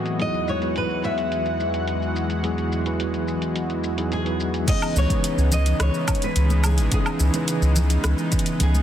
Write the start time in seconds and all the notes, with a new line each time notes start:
Already playing: A2 E3 F#3 B3 C4 E4 F#4 G#4 B4 D#5
0.06 closed hi-hat, shaker
0.19 E2 F#3 G#3 B3 D#4 E4 G#4 D#5 F#5, closed hi-hat, shaker
0.34 shaker
0.48 C#5, shaker
0.59 F#3 B3 E4 F#4 B4, closed hi-hat, shaker
0.76 B4, closed hi-hat, shaker
0.90 shaker
1.04 E5, shaker
1.18 closed hi-hat, shaker
1.32 closed hi-hat, shaker
1.46 closed hi-hat, shaker
1.60 shaker
1.74 closed hi-hat, shaker
1.88 closed hi-hat, shaker
2.02 shaker
2.16 shaker
2.30 closed hi-hat, shaker
2.42 F#3 B3 E4 F#4 G#4, closed hi-hat, shaker
2.58 closed hi-hat, shaker
2.72 shaker
2.83 F#3 B3 E4 F#4 B4, closed hi-hat, shaker
3.00 closed hi-hat, shaker
3.14 closed hi-hat, shaker
3.28 shaker
3.42 closed hi-hat, shaker
3.56 closed hi-hat, shaker
3.70 closed hi-hat, shaker
3.84 shaker
3.96 F#3 B3 D#4 E4 G#4, closed hi-hat, shaker
4.12 G#4, closed hi-hat, shaker
4.25 F#3 B3 D#4 E4 B4, closed hi-hat, shaker
4.40 shaker
4.54 closed hi-hat, shaker
4.67 C#3 E3 G#3 B3 C#4 D#4 G#4 D#5, kick, closed hi-hat, crash, shaker
4.82 low woodblock, shaker
4.96 C#2 C#5, shaker
5.08 E3 B3 C#4 D#4 B4, kick, closed hi-hat, high conga, shaker
5.24 closed hi-hat, shaker
5.38 C#2, shaker
5.52 D#5, closed hi-hat, low conga, shaker
5.66 closed hi-hat, shaker
5.80 C#2 C#5, cross-stick, closed hi-hat, shaker
5.94 shaker
6.08 kick, closed hi-hat, low woodblock, shaker
6.15 closed hi-hat
6.22 B4, closed hi-hat, shaker
6.36 C#2, closed hi-hat, shaker
6.50 high conga, shaker
6.64 G#4, closed hi-hat, low woodblock, shaker
6.78 G#1, closed hi-hat, shaker
6.91 E3 B3 C#4 D#4 G#4, kick, closed hi-hat, shaker
7.06 low woodblock, shaker
7.20 C#2, shaker
7.32 E3 B3 C#4 D#4 B4, closed hi-hat, high conga, shaker
7.48 closed hi-hat, shaker
7.62 C#2, shaker
7.76 closed hi-hat, low conga, shaker
7.90 closed hi-hat, shaker
8.04 C#2, cross-stick, closed hi-hat, shaker
8.18 shaker
8.32 kick, closed hi-hat, shaker
8.39 closed hi-hat
8.46 closed hi-hat, shaker
8.60 C#2 G#4, closed hi-hat, low conga, shaker
8.75 high conga, shaker